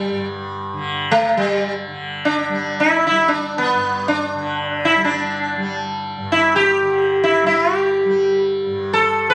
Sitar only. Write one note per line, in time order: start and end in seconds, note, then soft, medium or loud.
0.00 0.27 G3 medium
1.11 1.37 A3 medium
1.37 1.73 G3 medium
2.25 2.82 D4 medium
2.80 3.05 E4 medium
3.07 3.29 E4 medium
3.28 3.55 D4 medium
3.58 4.08 B3 medium
4.08 4.87 D4 medium
4.85 5.04 E4 medium
5.04 5.74 D4 medium
6.32 6.55 E4 medium
6.56 7.19 G4 medium
7.24 7.46 E4 medium
7.46 7.76 E4 medium
7.76 8.42 G4 medium
8.93 9.29 A4 medium
9.30 9.34 B4 medium